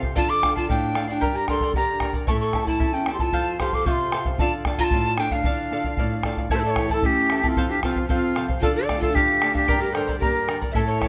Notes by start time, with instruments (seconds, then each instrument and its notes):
Already playing: nylon-string guitar C3 C4 F4 A4
0.02 charango C5 F5, bombo low
0.15 nylon-string guitar D3, pan flute F4, charango A4 D5 F5, quena A5, bombo low
0.29 pan flute A4, quena D6
0.42 nylon-string guitar D4 F4 A4, charango A4 D5 F5, bombo rim, bombo low
0.55 pan flute F4, charango D5 F5, quena A5, bombo low
0.68 nylon-string guitar A2, pan flute D4, charango A4 D5 F5, quena G5, bombo low
0.95 nylon-string guitar D4 F4 A4, charango A4 D5 F5, bombo rim
1.07 pan flute D4, charango D5 F5, quena G5
1.21 nylon-string guitar G2, charango G4 A#4 D5 G5 A#5, bombo low
1.34 pan flute G4, quena A#5
1.48 nylon-string guitar D4 G4 A#4, pan flute A4, charango A#4 D5 G5 A#5, quena C6, bombo rim, bombo low
1.60 charango A#4 D5 A#5, bombo low
1.73 nylon-string guitar D3, pan flute G4, charango A#4 D5 G5 A#5, quena A#5, bombo low
2.00 nylon-string guitar D4 G4 A#4, charango A#4 D5 G5 A#5, bombo rim, bombo low
2.13 charango A#4 D5 A#5, bombo low
2.27 nylon-string guitar A2, charango E4 A4 C#5 E5 A5, pan flute A4, quena C#6, bombo low
2.40 pan flute A4, quena C#6
2.53 nylon-string guitar C#4 E4 A4, charango E4 A4 E5 A5, bombo rim, bombo low
2.66 pan flute E4, charango E4 A4 A5, quena A5, bombo low
2.80 nylon-string guitar E2, charango E4 A4 E5 A5, bombo low
2.93 pan flute C#4, quena G5
3.06 nylon-string guitar C#4 E4 A4, charango E4 A4 E5 A5, bombo rim
3.13 pan flute G4, quena C6
3.19 charango E4 A4 A5, pan flute F4, quena A5, bombo low
3.32 nylon-string guitar F2, charango A4 C5 F5, bombo low
3.59 nylon-string guitar C4 F4 A4, pan flute G4, charango A4 C5 F5, quena C6, bombo rim, bombo low
3.73 pan flute A4, charango C5 F5, quena D6, bombo low
3.86 nylon-string guitar C3, pan flute F4, charango A4 C5 F5, quena C#6, bombo low
3.91 quena C6
4.12 nylon-string guitar C4 F4 A4, charango A4 C5 F5, bombo rim
4.25 charango C5 F5, bombo low
4.38 nylon-string guitar D3, pan flute F4, charango A4 D5 F5, quena A5, bombo low
4.65 nylon-string guitar D4 F4 A4, charango A4 D5 F5, bombo rim, bombo low
4.78 pan flute F4, charango D5 F5, quena A#5, bombo low
4.83 quena A5
4.91 nylon-string guitar A2, charango A4 D5 F5, bombo low
5.18 nylon-string guitar D4 F4 A4, pan flute D4, charango A4 D5 F5, quena G5, bombo rim
5.31 pan flute D4, charango D5 F5, quena F5, bombo low
5.44 nylon-string guitar D3, charango A4 D5 F5, bombo low
5.71 nylon-string guitar D4 F4 A4, charango A4 D5 F5
5.84 charango D5 F5, bombo low
5.97 nylon-string guitar A2, charango A4 D5 F5, bombo low
6.23 nylon-string guitar D4 F4 A4, charango A4 D5 F5, bombo rim, bombo low
6.37 charango D5 F5, bombo low
6.50 nylon-string guitar A2, charango E4 A4 C#5 E5 A5, pan flute E4, quena A4, bombo low
6.55 pan flute E4 G4, quena C5
6.59 quena A4
6.64 pan flute A4, quena D5
6.69 quena C#5
6.76 nylon-string guitar E3, charango E4 A4 E5 A5, bombo rim, bombo low
6.89 pan flute E4, charango E4 A4 A5, quena A4, bombo low
7.02 nylon-string guitar A3, pan flute C#4, charango E4 A4 E5 A5, quena G4, bombo low
7.30 nylon-string guitar E3, charango E4 A4 E5 A5, bombo rim
7.43 pan flute C4, charango E4 A4 A5, quena G4, bombo low
7.48 quena F4
7.56 nylon-string guitar F2, charango A4 C5 F5, bombo low
7.69 pan flute D4, quena G4
7.83 nylon-string guitar C3, pan flute C4, quena F4, charango A4 C5 F5, bombo rim, bombo low
7.96 charango C5 F5, bombo low
8.07 nylon-string guitar F3, pan flute C4, quena F4, charango A4 C5 F5, bombo low
8.35 nylon-string guitar C3, charango A4 C5 F5, bombo rim
8.48 charango C5 F5, bombo low
8.60 nylon-string guitar D3, pan flute F4, quena A4, charango A4 D5 F5, bombo low
8.74 pan flute A4, quena D5
8.89 nylon-string guitar A3, charango A4 D5 F5, bombo rim, bombo low
8.99 pan flute F4, quena A4, charango F5, bombo low
9.04 charango D5
9.12 pan flute D4, quena G4, charango A4, bombo low
9.16 nylon-string guitar F4, charango D5 F5
9.42 nylon-string guitar A3, charango A4 D5 F5, bombo rim
9.52 pan flute D4, quena G4, charango D5 F5, bombo low
9.68 nylon-string guitar G2, charango G4 A#4 D5 G5 A#5, bombo low
9.80 pan flute G4, quena A#4
9.92 nylon-string guitar D3, pan flute A4, charango A#4 D5 G5, quena C5, bombo rim
9.96 charango A#5
10.08 charango A#4 D5 A#5, bombo low
10.19 nylon-string guitar A#3, pan flute G4, quena A#4, charango A#4 D5 G5 A#5, bombo low
10.48 nylon-string guitar D3, charango A#4 D5 G5 A#5, bombo rim
10.61 charango A#4 D5 A#5, bombo low
10.71 nylon-string guitar A2, pan flute A4 C5, charango C#5, quena E5, bombo low
10.75 charango E4 A4 E5 A5
10.86 pan flute A4, quena C#5
11.00 nylon-string guitar E3, charango E4 A4 E5 A5, bombo rim, bombo low